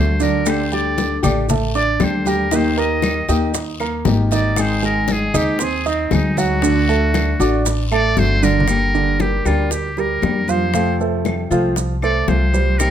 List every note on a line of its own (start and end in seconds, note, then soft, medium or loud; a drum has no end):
0.00 1.16 D2 medium
0.00 0.44 D3 soft
0.00 0.11 A3 medium
0.00 0.45 A3 medium
0.00 0.45 D4 medium
0.00 0.46 F#4 medium
0.00 0.11 A4 medium
0.00 0.24 C5 medium
0.00 0.11 A5 medium
0.20 0.62 D3 medium
0.20 0.62 D4 medium
0.20 0.50 A#4 medium
0.20 0.63 D5 medium
0.20 high bongo soft
0.20 high conga medium
0.20 short guiro medium
0.20 maracas medium
0.46 1.22 D3 medium
0.46 1.22 A3 medium
0.46 1.22 D4 medium
0.46 1.22 G4 medium
0.46 0.72 C5 medium
0.46 high bongo medium
0.46 long guiro medium
0.46 claves medium
0.46 maracas medium
0.72 1.14 G3 medium
0.72 1.14 G4 medium
0.72 1.20 D5 medium
0.72 1.14 G5 medium
0.72 high conga soft
0.72 maracas soft
0.98 high bongo medium
0.98 high conga medium
0.98 short guiro medium
0.98 maracas soft
1.23 1.96 A1 medium
1.23 1.48 A3 medium
1.23 1.44 D4 medium
1.23 1.48 D4 medium
1.23 1.48 G4 medium
1.23 1.45 D5 medium
1.23 1.45 D6 medium
1.23 high bongo soft
1.23 low conga medium
1.23 short guiro medium
1.23 claves medium
1.23 maracas medium
1.49 1.70 A3 medium
1.49 1.71 A4 medium
1.49 1.71 A5 medium
1.49 muted nylon-string guitar stroke medium
1.49 high bongo medium
1.49 high conga soft
1.49 low conga medium
1.49 long guiro medium
1.49 maracas medium
1.75 2.17 D4 medium
1.75 2.17 D5 medium
1.75 2.06 D5 loud
1.75 2.17 D6 medium
1.75 high bongo soft
1.75 high conga soft
1.75 maracas soft
2.00 3.22 D#2 medium
2.00 2.50 D3 soft
2.00 2.51 A3 medium
2.00 2.51 D4 medium
2.00 2.51 G4 medium
2.00 high bongo soft
2.00 low bongo medium
2.00 high conga medium
2.00 short guiro medium
2.00 claves medium
2.00 maracas soft
2.04 2.29 C5 medium
2.25 2.47 G3 medium
2.25 2.47 G4 medium
2.25 2.57 A#4 medium
2.25 2.48 G5 medium
2.25 high bongo soft
2.25 high conga medium
2.25 short guiro medium
2.25 maracas medium
2.51 3.28 D#3 medium
2.51 2.73 D#3 medium
2.51 3.28 A#3 medium
2.51 3.29 D#4 medium
2.51 2.73 D#4 medium
2.51 3.28 G4 medium
2.51 2.80 C5 medium
2.51 2.73 D#5 medium
2.51 high bongo medium
2.51 high conga soft
2.51 long guiro medium
2.51 maracas medium
2.77 3.19 A#3 medium
2.77 3.20 A#4 medium
2.77 3.29 D#5 medium
2.77 3.20 A#5 medium
2.77 high conga soft
2.77 maracas soft
3.02 high bongo medium
3.02 high conga medium
3.02 short guiro medium
3.02 claves medium
3.02 maracas soft
3.28 4.02 D#2 medium
3.28 3.53 A#3 medium
3.28 3.71 D#4 medium
3.28 3.54 D#4 medium
3.28 3.53 G4 medium
3.28 3.71 D#5 medium
3.28 3.71 D#6 medium
3.28 high bongo soft
3.28 short guiro medium
3.28 maracas medium
3.54 muted nylon-string guitar stroke medium
3.54 high bongo medium
3.54 high conga soft
3.54 long guiro medium
3.54 maracas medium
3.80 4.22 A#3 medium
3.80 4.22 A#4 medium
3.80 4.23 A#5 medium
3.80 high bongo soft
3.80 high conga soft
3.80 claves medium
3.80 maracas soft
4.05 5.28 G#1 medium
4.05 4.56 D#3 medium
4.05 4.56 A#3 medium
4.05 4.57 D#4 medium
4.05 4.57 G4 medium
4.05 high bongo soft
4.05 low bongo medium
4.05 high conga medium
4.05 short guiro medium
4.05 maracas soft
4.31 4.74 D#3 medium
4.31 4.74 D#4 medium
4.31 4.63 D5 medium
4.31 4.74 D#5 medium
4.31 high bongo soft
4.31 short guiro medium
4.31 maracas medium
4.56 5.33 D#3 medium
4.56 5.34 G#3 medium
4.56 5.34 C4 medium
4.56 5.34 D#4 medium
4.56 5.33 G#4 medium
4.56 high bongo medium
4.56 high conga soft
4.56 long guiro medium
4.56 claves medium
4.56 maracas medium
4.61 4.84 C5 medium
4.83 5.25 G#3 medium
4.83 5.25 G#4 medium
4.83 5.14 A#4 loud
4.83 5.25 G#5 medium
4.83 high conga soft
4.83 maracas soft
5.08 high bongo medium
5.08 high conga medium
5.08 short guiro medium
5.08 maracas soft
5.12 5.38 G#4 medium
5.34 6.07 D#2 medium
5.34 5.60 G#3 medium
5.34 5.60 C4 medium
5.34 5.55 D#4 medium
5.34 5.59 D#4 medium
5.34 5.65 G4 medium
5.34 5.59 G#4 medium
5.34 5.55 D#5 medium
5.34 5.56 D#6 medium
5.34 high bongo soft
5.34 low conga medium
5.34 short guiro medium
5.34 claves medium
5.34 maracas medium
5.59 5.81 C4 medium
5.59 5.81 C5 medium
5.59 5.81 C6 medium
5.59 muted nylon-string guitar stroke medium
5.59 high bongo medium
5.59 high conga soft
5.59 long guiro medium
5.59 maracas loud
5.64 5.87 G#4 loud
5.86 6.16 C4 medium
5.86 6.28 D#4 medium
5.86 6.28 D#5 medium
5.86 6.28 D#6 medium
5.86 high bongo soft
5.86 high conga soft
5.86 maracas soft
6.11 7.33 D2 loud
6.11 6.62 G#3 soft
6.11 6.62 C4 medium
6.11 6.62 D#4 medium
6.11 6.39 D#4 medium
6.11 6.62 G#4 medium
6.11 high bongo soft
6.11 low bongo medium
6.11 high conga medium
6.11 short guiro medium
6.11 claves medium
6.11 maracas soft
6.37 6.58 F#3 medium
6.37 7.66 F#4 loud
6.37 6.59 F#4 medium
6.37 6.59 F#5 medium
6.37 high bongo soft
6.37 high conga medium
6.37 short guiro medium
6.37 maracas medium
6.62 6.84 D3 medium
6.62 7.39 D3 medium
6.62 7.39 A3 medium
6.62 6.84 D4 medium
6.62 7.40 D4 medium
6.62 7.39 F#4 medium
6.62 6.84 D5 medium
6.62 high bongo medium
6.62 high conga soft
6.62 long guiro medium
6.62 maracas medium
6.88 7.31 A3 medium
6.88 7.31 A4 medium
6.88 7.31 A5 medium
6.88 high conga soft
6.88 maracas soft
7.14 high bongo medium
7.14 high conga loud
7.14 short guiro medium
7.14 claves medium
7.14 maracas soft
7.40 8.13 A1 medium
7.40 7.65 A3 medium
7.40 7.82 D4 medium
7.40 7.65 D4 medium
7.40 7.65 F#4 medium
7.40 7.82 D5 medium
7.40 7.82 D6 medium
7.40 high bongo soft
7.40 short guiro medium
7.40 maracas medium
7.65 muted nylon-string guitar stroke medium
7.65 high bongo medium
7.65 high conga soft
7.65 long guiro medium
7.65 maracas medium
7.91 8.34 A3 medium
7.91 8.34 A4 medium
7.91 8.20 D5 loud
7.91 8.34 A5 medium
7.91 high bongo soft
7.91 high conga soft
7.91 claves medium
7.91 maracas soft
8.17 9.39 G1 medium
8.17 8.67 D3 medium
8.17 8.68 A3 medium
8.17 8.68 D4 medium
8.17 8.68 F#4 medium
8.17 8.45 C5 loud
8.17 high bongo soft
8.17 low bongo medium
8.17 high conga medium
8.17 short guiro medium
8.17 maracas soft
8.42 8.64 D3 medium
8.42 8.64 D4 medium
8.42 9.23 A#4 loud
8.42 8.64 D5 medium
8.42 high bongo soft
8.42 high conga medium
8.42 short guiro medium
8.42 maracas medium
8.60 low conga medium
8.68 9.44 D3 medium
8.68 9.45 G3 medium
8.68 9.45 A#3 medium
8.68 9.45 D4 medium
8.68 9.44 G4 medium
8.68 high bongo medium
8.68 high conga soft
8.68 claves medium
8.68 maracas medium
8.94 9.15 D3 medium
8.94 9.15 D4 medium
8.94 9.16 D5 medium
8.94 high conga soft
8.94 maracas soft
9.20 9.41 G3 medium
9.20 9.41 G4 medium
9.20 9.48 G4 medium
9.20 9.41 A#4 medium
9.20 high bongo medium
9.20 high conga medium
9.20 maracas soft
9.45 10.18 D2 medium
9.45 9.88 G3 medium
9.45 9.71 G3 medium
9.45 9.71 A#3 medium
9.45 9.71 D4 medium
9.45 9.72 F4 medium
9.45 9.70 G4 medium
9.45 9.88 G4 medium
9.45 9.88 A#4 medium
9.45 high bongo soft
9.45 claves medium
9.45 maracas medium
9.71 10.01 G4 medium
9.71 muted nylon-string guitar stroke medium
9.71 high bongo medium
9.71 high conga soft
9.71 maracas medium
9.97 10.39 G3 medium
9.97 10.39 G4 medium
9.97 10.40 A#4 medium
9.97 10.52 A#4 loud
9.97 high bongo soft
9.97 high conga soft
9.97 maracas soft
10.22 11.45 F2 medium
10.22 10.73 G3 medium
10.22 10.73 A#3 medium
10.22 10.74 D4 medium
10.22 10.74 G4 medium
10.22 high bongo soft
10.22 low bongo medium
10.22 high conga medium
10.22 claves medium
10.22 maracas soft
10.48 10.70 F3 medium
10.48 10.70 F4 medium
10.48 11.01 C5 medium
10.48 10.70 F5 medium
10.48 high bongo soft
10.48 high conga medium
10.48 maracas medium
10.74 11.50 C3 medium
10.74 10.95 F3 medium
10.74 11.50 F3 medium
10.74 11.50 A3 medium
10.74 11.51 C4 medium
10.74 10.95 F4 medium
10.74 11.49 F4 medium
10.74 10.95 F5 medium
10.74 high bongo medium
10.74 high conga soft
10.74 maracas medium
11.00 11.42 A3 medium
11.00 11.43 A4 medium
11.00 11.43 C5 medium
11.00 high conga soft
11.00 maracas soft
11.25 high bongo medium
11.25 high conga medium
11.25 claves medium
11.25 maracas soft
11.51 12.24 C2 medium
11.51 11.94 F3 medium
11.51 11.76 F3 medium
11.51 11.76 A3 medium
11.51 11.76 C4 medium
11.51 11.76 F4 medium
11.51 11.94 F4 medium
11.51 11.94 F5 medium
11.51 high bongo soft
11.51 maracas medium
11.76 muted nylon-string guitar stroke medium
11.76 high bongo medium
11.76 high conga soft
11.76 maracas medium
12.02 12.45 A3 medium
12.02 12.45 A4 medium
12.02 12.45 C5 medium
12.02 12.30 D5 loud
12.02 high bongo soft
12.02 high conga soft
12.02 claves medium
12.02 maracas soft
12.28 12.90 C2 medium
12.28 12.78 F3 soft
12.28 12.79 A3 medium
12.28 12.79 C4 soft
12.28 12.79 F4 medium
12.28 12.80 C5 loud
12.28 high bongo soft
12.28 low bongo medium
12.28 high conga medium
12.28 maracas soft
12.54 12.90 G3 medium
12.54 12.90 G4 medium
12.54 12.90 C5 medium
12.54 high bongo soft
12.54 high conga medium
12.54 maracas medium
12.78 12.90 C3 medium
12.78 12.90 D#3 medium
12.78 12.90 G3 medium
12.78 12.90 C4 medium
12.78 12.90 G4 medium
12.78 12.90 A#4 loud
12.78 high bongo medium
12.78 claves medium
12.78 maracas medium